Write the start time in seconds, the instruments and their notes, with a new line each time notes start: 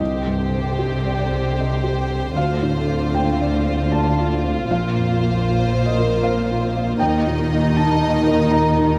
Already playing: harp C4 A4
0.00 double bass section C2, felt piano C2 D#5, cello section C3, harp C3, viola section D3, violin section G4 C5
0.27 felt piano G2
0.39 harp C4
0.54 felt piano C4
0.78 harp G4, felt piano G4
1.05 felt piano D5
1.19 harp C5, felt piano D5
1.31 felt piano C5
1.58 felt piano D#5, harp G5
1.84 felt piano G4
1.97 harp D#5
2.10 felt piano C4
2.35 double bass section D2, felt piano D2 F5, harp D3, cello section D3, viola section A3, violin section F4
2.62 felt piano A2
2.75 harp C4
2.89 felt piano C4
3.14 harp F4, felt piano F4 G5
3.41 felt piano D5
3.53 harp C5
3.67 felt piano C5
3.92 felt piano D5 A5, harp F5
4.19 felt piano F4
4.31 harp D5
4.44 felt piano C4
4.69 double bass section A#1, felt piano A#1 F5, cello section A#2, harp A#2, viola section A#3, violin section C5
4.97 felt piano F2
5.09 harp A#3
5.23 felt piano A#3
5.47 harp F4, felt piano F4
5.74 felt piano C5
5.85 harp A#4, felt piano D#5
6.00 felt piano A#4
6.23 felt piano C5 F5, harp F5
6.51 felt piano F4
6.61 harp C5
6.77 felt piano A#3
6.99 double bass section D#2, felt piano D#2 G5, harp D#3, cello section D#3, violin section D#4 D#5
7.27 felt piano A#2
7.38 harp G4
7.53 felt piano A#3
7.76 felt piano D#4 A5, harp G5
8.02 felt piano D#5
8.13 harp A#4
8.27 felt piano A#4
8.51 felt piano D#5 A#5, harp A#5
8.78 felt piano D#4
8.90 harp A#4